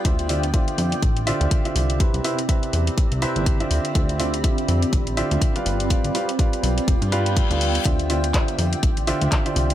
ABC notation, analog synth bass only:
X:1
M:4/4
L:1/16
Q:"Swing 16ths" 1/4=123
K:Ddor
V:1 name="Analog synth bass" clef=bass
D,,4 z2 F,, z A,,,2 z D,, z2 C,,2 | z C,, z4 E,, z2 C,, z G,,,2 z D,, z | D,,4 z2 F,, z A,,,2 z D,, z2 G,,,2 | z G,,, z4 B,,, z F,,, G,,3 z D,,2 z |
D,,4 z2 F,, z A,,,2 z D,, z2 C,,2 |]